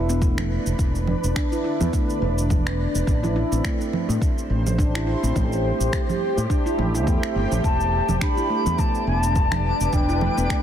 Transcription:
Already playing: fretless electric bass E1, ambient pad D4 B4
0.09 handpan B3, cabasa
0.22 handpan A3, kick, cabasa
0.38 finger snap, low conga, cabasa
0.66 fretless electric bass E1, cabasa
0.79 fretless electric bass E1, kick, cabasa
0.95 cabasa
1.07 low conga
1.24 fretless electric bass E1, cabasa
1.36 handpan D4, finger snap, kick, cabasa
1.52 handpan E4, cabasa
1.64 handpan E4
1.81 fretless electric bass E2, handpan B3, low conga, cabasa
1.93 handpan A3, kick, cabasa
2.10 cabasa
2.22 fretless electric bass E1
2.38 cabasa
2.50 kick, low conga, cabasa
2.67 finger snap, cabasa
2.95 fretless electric bass E1, cabasa
3.07 fretless electric bass A1, handpan D4, kick, cabasa
3.23 handpan E4, low conga, cabasa
3.36 handpan E4
3.42 ambient pad C5
3.52 fretless electric bass A1, handpan C4, cabasa
3.64 handpan A3, finger snap, kick, cabasa
3.70 ambient pad G4
3.81 cabasa
3.93 low conga
4.09 fretless electric bass A2, cabasa
4.22 kick, cabasa
4.38 cabasa
4.50 fretless electric bass A1
4.67 low conga, cabasa
4.78 handpan D4, kick, cabasa
4.95 handpan E4, finger snap, cabasa
5.07 handpan E4
5.23 fretless electric bass A1, handpan C4, cabasa
5.36 fretless electric bass A1, handpan A3, kick, low conga, cabasa
5.52 cabasa
5.80 fretless electric bass A1, cabasa
5.93 finger snap, kick, cabasa
6.09 low conga, cabasa
6.37 fretless electric bass A2, cabasa
6.50 handpan D4, kick, cabasa
6.66 handpan E4, cabasa
6.78 fretless electric bass A1, handpan A3, low conga
6.95 handpan E4, cabasa
7.07 fretless electric bass E2, handpan A3, kick, cabasa
7.23 handpan C4, finger snap, cabasa
7.35 fretless electric bass G1, handpan A3
7.52 fretless electric bass A1, low conga, cabasa
7.64 fretless electric bass E1, synth texture D5, bansuri A5, kick, cabasa
7.80 cabasa
8.05 fretless electric bass E1, ambient pad D4, low conga
8.09 cabasa
8.21 handpan D4, bansuri B5, finger snap, kick, cabasa
8.37 handpan E4, cabasa
8.50 handpan A3
8.66 fretless electric bass E2, handpan B3, ambient pad B4, cabasa
8.78 handpan A3, bansuri A5, kick, low conga, cabasa
8.95 cabasa
8.99 ambient pad E5
9.07 fretless electric bass E1, bansuri G#5
9.19 bansuri A5
9.23 cabasa
9.36 kick, cabasa
9.52 finger snap, low conga, cabasa
9.80 fretless electric bass E1, cabasa
9.93 fretless electric bass E1, handpan D4, bansuri G5, kick, cabasa
10.09 handpan E4, cabasa
10.21 handpan A3, low conga
10.37 fretless electric bass E1, handpan B3, cabasa
10.50 handpan A3, finger snap, kick, cabasa

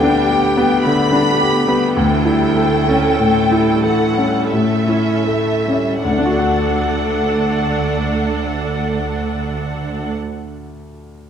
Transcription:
Already playing: grand piano D2 D3 B3 D4 G4, viola section G4, violin section G5
0.03 viola section G3, grand piano D4
0.30 viola section B3, grand piano G4
0.57 viola section G3, grand piano B3
0.84 viola section D3, grand piano D3, violin section B5
1.11 viola section G3, grand piano D4
1.38 viola section B3, grand piano G4
1.66 viola section G3, grand piano B3
1.96 grand piano D2, cello section D2, viola section E3 A4, violin section G5
2.25 viola section G3, grand piano E4
2.56 viola section A3, grand piano A4
2.86 viola section C#4, grand piano C#4
3.18 grand piano A2, viola section A3
3.50 viola section G3, grand piano E4
3.83 viola section E3, grand piano A4, violin section F#5
4.16 viola section G3, grand piano C#4
4.51 grand piano A2, viola section A3, violin section E5
4.87 viola section C#4, grand piano E4
5.26 viola section A3, grand piano A4
5.66 viola section G3, grand piano C#4
6.02 cello section D2, grand piano D2, viola section D4 A4, violin section F#5
6.11 grand piano D3
6.18 grand piano D4
6.26 grand piano F#4
6.32 grand piano A4
6.39 grand piano F#5

